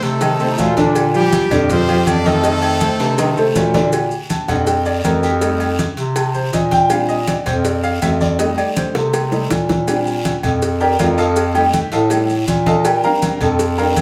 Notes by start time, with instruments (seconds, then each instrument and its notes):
Already playing: grand piano A3 A4 C5
0.02 bass clarinet C3, horn section A3 C4 D#4 A4, cowbell, high conga, short guiro, maracas
0.21 grand piano D#3 D#4 D#5, cowbell, high conga, low agogo, long guiro, maracas
0.39 bass clarinet C3, grand piano A3 A4 C5, trombone section C4, high conga, maracas
0.49 trombone section D#4
0.58 bass clarinet A#2, trombone section F4, cowbell, high conga, low timbale, low agogo, short guiro, maracas
0.77 grand piano D3 D4 D5, trombone section D4, cowbell, high conga, short guiro, maracas
0.95 cowbell, high conga, low agogo, long guiro, maracas
1.14 grand piano F3 F4 G4, horn section G3 D4 G4, high conga, maracas
1.32 cowbell, high conga, low agogo, short guiro, maracas
1.50 bass clarinet F2, grand piano D3 D4 D5, cowbell, high conga, low conga, low agogo, short guiro, maracas
1.69 grand piano F3 F4 G4, horn section C4 F4 G4 C5, cowbell, high conga, low conga, long guiro, maracas
1.88 grand piano F3 F4 G4, low agogo, maracas
2.06 bass clarinet F2, horn section D4 D5, cowbell, high conga, low agogo, short guiro, maracas
2.25 grand piano D#3 D#4 D#5, horn section A3 C4 D#4 A4, high conga, short guiro, maracas
2.44 grand piano D#3 D#4 D#5, cowbell, high conga, low agogo, long guiro, maracas
2.62 high conga, low agogo, maracas
2.81 grand piano A3 A4 C5, cowbell, high conga, low agogo, short guiro, maracas
2.99 bass clarinet C3, cowbell, high conga, high timbale, short guiro, maracas
3.18 grand piano D#3 D#4 D#5, cowbell, high conga, high timbale, low agogo, long guiro, maracas
3.36 bass clarinet C3, grand piano A3 A4 C5, high conga, maracas
3.55 bass clarinet A#2, cowbell, high conga, low timbale, low agogo, short guiro, maracas
3.74 grand piano D3 D4 D5, cowbell, high conga, low timbale, short guiro, maracas
3.92 cowbell, high conga, low agogo, long guiro, maracas
4.11 high conga, maracas
4.29 grand piano A5, cowbell, high conga, low agogo, short guiro, maracas
4.48 bass clarinet F2, grand piano G3 C4 D4 F#5, cowbell, high conga, low conga, low agogo, short guiro, maracas
4.66 grand piano G5, cowbell, high conga, long guiro, maracas
4.85 grand piano D5, high conga, low agogo, maracas
5.04 bass clarinet F2, grand piano A#4, cowbell, high conga, low timbale, low agogo, short guiro, maracas
5.23 grand piano G4, short guiro, maracas
5.41 grand piano G3 A3 D#4 A4, cowbell, high conga, low agogo, long guiro, maracas
5.60 high conga, low agogo, maracas
5.79 cowbell, high conga, low agogo, short guiro, maracas
5.97 bass clarinet C3, cowbell, high conga, short guiro, maracas
6.16 grand piano A5, cowbell, high conga, low agogo, long guiro, maracas
6.34 grand piano C5, high conga, maracas
6.53 bass clarinet A#2, grand piano D#5, cowbell, high conga, low agogo, short guiro, maracas
6.71 grand piano G5, cowbell, high conga, short guiro, maracas
6.90 grand piano G3 C4 D4 F5, cowbell, high conga, low agogo, long guiro, maracas
7.09 grand piano D#5, high conga, maracas
7.27 grand piano D5, cowbell, high conga, low agogo, short guiro, maracas
7.46 bass clarinet F2, grand piano C5, cowbell, high conga, low conga, low agogo, short guiro, maracas
7.65 grand piano D5, cowbell, high conga, long guiro, maracas
7.83 grand piano F5, high conga, low agogo, maracas
8.01 bass clarinet F2, grand piano E5, cowbell, high conga, low timbale, low agogo, short guiro, maracas
8.21 grand piano D5, high conga, short guiro, maracas
8.39 grand piano G3 A3 D#4 D#5, cowbell, high conga, low agogo, long guiro, maracas
8.58 grand piano D5, high conga, low agogo, maracas
8.76 grand piano C5, cowbell, high conga, low agogo, short guiro, maracas
8.94 bass clarinet C3, grand piano A4, cowbell, high bongo, high conga, short guiro, maracas
9.13 cowbell, high bongo, high conga, low agogo, long guiro, maracas
9.31 grand piano G3 A3 D#4, low bongo, high conga, maracas
9.50 bass clarinet A#2, cowbell, low bongo, high conga, low agogo, short guiro, maracas
9.69 cowbell, low bongo, high conga, short guiro, maracas
9.87 grand piano G3 C4 D4, cowbell, high conga, low agogo, long guiro, maracas
10.07 high conga, maracas
10.25 cowbell, high conga, low agogo, short guiro, maracas
10.43 bass clarinet F2, cowbell, high conga, low conga, low agogo, short guiro, maracas
10.62 cowbell, high conga, long guiro, maracas
10.80 grand piano G4 A#4 D5 G5, high conga, low agogo, maracas
10.99 bass clarinet F2, grand piano F4 A#4 D5 F5, cowbell, high conga, low timbale, low agogo, short guiro, maracas
11.18 grand piano A4 D#5 F5 A5, short guiro, maracas
11.36 cowbell, high conga, low agogo, long guiro, maracas
11.54 grand piano G3 A3 D#4 G4 G5, high conga, low agogo, maracas
11.73 cowbell, high conga, low agogo, short guiro, maracas
11.92 bass clarinet A2, grand piano A4 D#5 F5 A5, cowbell, high conga, short guiro, maracas
12.10 grand piano G3 A3 D#4, cowbell, high conga, low agogo, long guiro, maracas
12.29 high conga, maracas
12.47 bass clarinet A#2, cowbell, high conga, low agogo, short guiro, maracas
12.66 grand piano A4 D#5 F5 A5, cowbell, high conga, short guiro, maracas
12.85 grand piano G4 A#4 D5 G5, cowbell, high conga, low agogo, long guiro, maracas
13.03 grand piano G3 C4 D4 A#4 F5 G5 A#5, high conga, maracas
13.22 cowbell, high conga, low agogo, short guiro, maracas
13.40 bass clarinet F2, grand piano A4 A5, cowbell, high conga, low conga, low agogo, short guiro, maracas
13.59 cowbell, high conga, long guiro, maracas
13.78 grand piano G3 C4 D4 A#4 F5 G5 A#5, high conga, low agogo, maracas
13.96 bass clarinet F2, cowbell, high conga, low agogo, short guiro, maracas